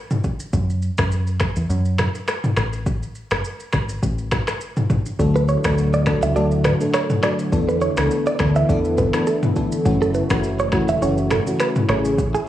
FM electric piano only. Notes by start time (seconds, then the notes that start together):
5.19 F#3 A3 D4 A4
5.64 F#3 A3 D4 A4
6.06 F#3 A3 D4 A4
6.35 F#3 A3 D4 A4
6.81 F#3 A3 D4 A4
7.23 F#3 A3 D4 A4
7.52 E3 B3 D4 A4
7.97 E3 B3 D4 A4
8.39 E3 B3 D4 A4
8.69 E3 B3 D4 A4
9.14 E3 B3 D4 A4
9.56 E3 B3 D4 A4
9.85 E3 A3 C#4 F#4
10.30 E3 A3 C#4 F#4
10.72 E3 A3 C#4 F#4
11.02 E3 A3 C#4 F#4
11.47 E3 A3 C#4 F#4
11.89 E3 A3 C#4 G#4